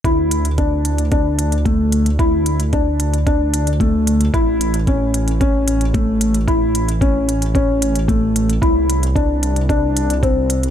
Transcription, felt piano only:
\new Staff \with { instrumentName = "Felt piano" } { \time 4/4 \key a \phrygian \tempo 4 = 112 e'4 d'4 d'4 a4 | e'4 d'4 d'4 a4 | e'4 cis'4 cis'4 a4 | e'4 cis'4 cis'4 a4 |
e'4 d'4 d'4 c'4 | }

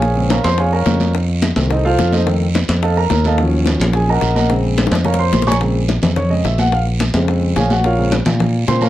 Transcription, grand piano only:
<<
  \new Staff \with { instrumentName = "Grand piano" } { \time 4/4 \key bes \minor \tempo 4 = 215 <aes' des'' f'' aes''>4 <bes' des'' f'' bes''>8 <c'' c'''>8 <aes' des'' f'' aes''>8 <bes' des'' f'' bes''>4. | r2 <ees' a' c'' ees''>8 <f' a' c'' f''>4 <ees' a' c'' ees''>8 | r2 <a' ees'' f'' a''>8 <bes' bes''>4 <a' ees'' f'' a''>8 | r2 <aes' aes''>8 <bes' ees'' ges'' bes''>4 <bes' ees'' ges'' bes''>8 |
r2 <bes' des'' f'' bes''>8 <c'' c'''>4 <des'' aes'' bes'' des'''>8 | r2 des''8 ees''8 e''8 ges''8 | f''8 r2 r8 <aes' des'' f'' aes''>8 <ges' ges''>8 | <f' bes' des'' f''>4 r2 <c'' c'''>8 <bes' des'' f'' bes''>8 | }
  \new Staff \with { instrumentName = "Grand piano" } { \clef bass \time 4/4 \key bes \minor r8 <des aes c'>8 r2 <des aes c'>8 r8 | r4. <ees a c'>8 r2 | <ees a c'>8 r2. r8 | <f ges des'>1 |
<des aes c'>4. r2 r8 | <des aes c'>8 r2 <des aes c'>8 r4 | r4. <des aes c'>4. r4 | r8 <des aes c'>8 r2 <des aes c'>8 r8 | }
>>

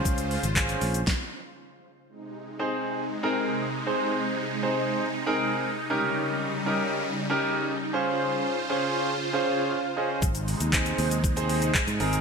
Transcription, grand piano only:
\new Staff \with { instrumentName = "Grand piano" } { \time 4/4 \key aes \major \tempo 4 = 118 << { r1 | r1 | r1 | r1 |
r2 r8 aes''8 f''8 ees''8 | r1 | } \\ { <des' f' aes' c''>8. r16 <des' f' aes' c''>8. r2 r16 | r4 <c' ees' aes' c''>8. r8 <c' ees' aes' bes'>8. r8 <c' ees' aes' c''>8~ | <c' ees' aes' c''>8 r8 <c' ees' aes' c''>8. r8 <c' ees' aes' bes'>8. r8 <des' ees' g' bes'>8~ | <des' ees' g' bes'>8. r16 <des' ees' g' bes'>8. r8 <des' ees' g' bes'>8. r8 <des' f' aes' c''>8~ |
<des' f' aes' c''>8. r16 <des' f' aes' c''>8. r8 <des' f' aes' c''>8. r8 <des' f' aes' c''>8 | r4 <c' ees' aes' c''>8. r8 <c' ees' aes' c''>8. r8 <c' ees' aes' bes'>8 | } >> }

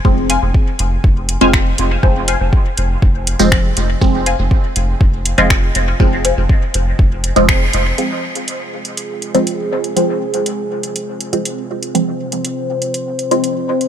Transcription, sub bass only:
\new Staff \with { instrumentName = "Sub bass" } { \clef bass \time 4/4 \key f \minor \tempo 4 = 121 f,,8. f,,16 r8 f,,16 r16 f,,8. f,,8. f,,16 r16 | f,,8. f,,16 r8 f,,16 r16 f,,8. f,,8. f,,16 r16 | f,,8. f,,16 r8 f,,16 r16 f,,8. f,,8. f,,16 r16 | f,,8. f,,16 r8 f,,16 r16 f,,8. f,,8. f,,16 r16 |
r1 | r1 | r1 | }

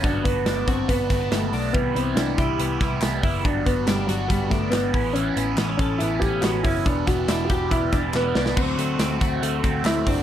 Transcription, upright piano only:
\new Staff \with { instrumentName = "Upright piano" } { \time 4/4 \key g \major \tempo 4 = 141 d'8 b4 c'8 b4 a4 | b8 c'8 d'8 e'2 r8 | d'8 b8 g8 fis8 g8 a8 b4 | cis'4 r8 cis'8 e'8 g'8 fis'8 e'8 |
d'8 fis'8 e'16. g'32 fis'8 e'8 d'8 b8 b8 | c'2. e'8 d'8 | }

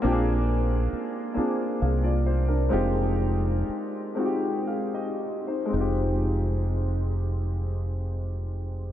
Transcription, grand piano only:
\new Staff \with { instrumentName = "Grand piano" } { \time 6/8 \key f \dorian \tempo 4. = 40 << { r2 <aes' f''>16 <f' d''>16 c''16 <d' bes'>16~ | <d' bes'>16 r4. r16 <aes' f''>16 <g' ees''>8 <ees' c''>16~ | <ees' c''>16 r2 r8. | } \\ { <bes c' d' f' g' aes'>4 r8 <bes c' d' f' aes'>4 r8 | <aes c' ees' f' g'>4 r8 <aes c' ees' f' ges' g'>4 r8 | <aes c' ees' f' g'>2. | } >> }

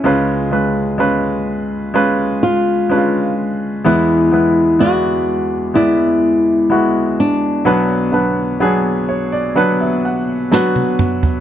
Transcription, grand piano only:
<<
  \new Staff \with { instrumentName = "Grand piano" } { \time 4/4 \key e \mixolydian \tempo 4 = 63 << { r1 | r1 | r4. cis''16 d''16 fis''16 e''16 fis''8 a''4 | } \\ { <gis cis' eis' b'>8 <gis cis' eis' b'>8 <gis cis' eis' b'>4 <gis cis' eis' b'>4 <gis cis' d' eis' b'>4 | <gis b e' b'>8 <gis b e' b'>8 <gis b e' d''>4 <gis b e' d''>4 <gis b e' fis'>4 | <fis b d' b'>8 <fis b d' b'>8 <fis b d' gis'>4 <fis b d' b'>4 <fis b d' b'>4 | } >> }
  \new Staff \with { instrumentName = "Grand piano" } { \clef bass \time 4/4 \key e \mixolydian <cis, cis>1 | <e, e>1 | <b,, b,>1 | }
>>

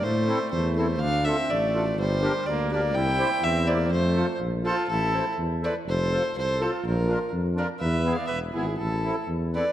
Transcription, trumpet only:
\new Staff \with { instrumentName = "Trumpet" } { \time 2/4 \key f \major \tempo 4 = 123 a4 a8 a8 | d'8 c'8 a4 | g4 bes8 bes8 | e'4 c'8 bes8 |
a4 r8 f'8 | \key a \minor e'4 r8 b'8 | a'4 a'8 f'8 | f'4 r8 bes'8 |
b'8. d''16 b'8 e'8 | e'4 r8 b'8 | }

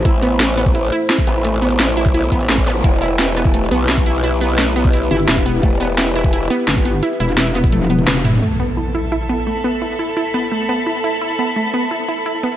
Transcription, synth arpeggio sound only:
\new Staff \with { instrumentName = "Synth arpeggio sound" } { \time 4/4 \key a \minor \tempo 4 = 172 e'8 b8 a8 b8 e'8 e'8 e'8 b8 | a8 b8 e'8 e'8 e'8 b8 a8 b8 | e'8 e'8 e'8 b8 a8 b8 e'8 e'8 | e'8 b8 a8 b8 e'8 e'8 e'8 b8 |
a8 b8 e'8 e'8 e'8 b8 a8 b8 | e'8 e'8 e'8 b8 a8 b8 b8 e'8 | a8 b8 e'8 e'8 e'8 b8 a8 b8 | e'8 e'8 e'8 b8 a8 b8 e'8 e'8 |
e'8 b8 a8 b8 e'8 e'8 e'8 b8 | }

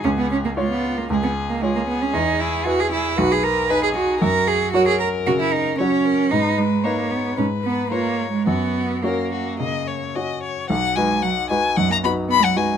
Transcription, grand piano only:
\new Staff \with { instrumentName = "Grand piano" } { \time 4/4 \key cis \mixolydian \tempo 4 = 114 cis,4 <eis' cis''>4 cis,4 <eis' cis''>4 | \key b \major e,4 <e' b'>4 b,,4 <dis' b'>4 | fis,4 <fis fis' cis''>4 cis4 <fis fis' cis''>4 | gis,4 <dis' b'>4 gis,4 <eis' b'>4 |
fis,4 <cis' fis' cis''>4 cis4 <cis' fis' cis''>4 | b,,8 <dis' fis' b'>4 <dis' fis' b'>8 fis,8 <dis' fis' b'>4 <dis' fis' b'>8 | }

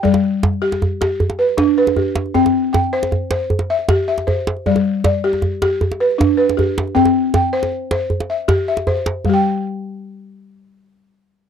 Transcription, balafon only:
\new Staff \with { instrumentName = "Balafon" } { \time 12/8 \key g \major \tempo 4. = 104 << { <d'' g''>4. r2 b'4 b'4. | g''4 g''4. r4 e''4 e''4. | d''4 d''4. r4 b'4 b'4. | g''4 g''4. r4 e''4 e''4. |
<g g' g''>1. | } \\ { g4 r8 g'4 g'4 r8 d'4 g'4 | c'4 r8 c''4 c''4 r8 g'4 c''4 | g4 r8 g'4 g'4 r8 d'4 g'4 | c'4 r8 c''4 c''4 r8 g'4 c''4 |
r1. | } >> }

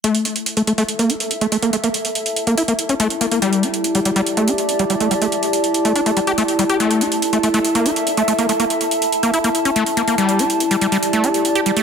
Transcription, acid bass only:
\new Staff \with { instrumentName = "Acid bass" } { \time 4/4 \tempo 4 = 142 a8 e'16 r8 a16 a16 a16 r16 bes16 e'16 r8 a16 a16 bes16 | a16 bes16 r4 r16 bes16 e'16 bes16 r16 cis'16 a16 r16 bes16 bes16 | g8 d'16 r8 g16 g16 g16 r16 a16 d'16 r8 g16 g16 a16 | g16 a16 r4 r16 a16 d'16 a16 g16 g'16 a16 r16 g16 g'16 |
a8 e'16 r8 a16 a16 a16 r16 bes16 e'16 r8 a16 a16 bes16 | a16 bes16 r4 r16 bes16 e'16 bes16 r16 cis'16 a16 r16 bes16 bes16 | g8 d'16 r8 g16 g16 g16 r16 a16 d'16 r8 g'16 g16 a16 | }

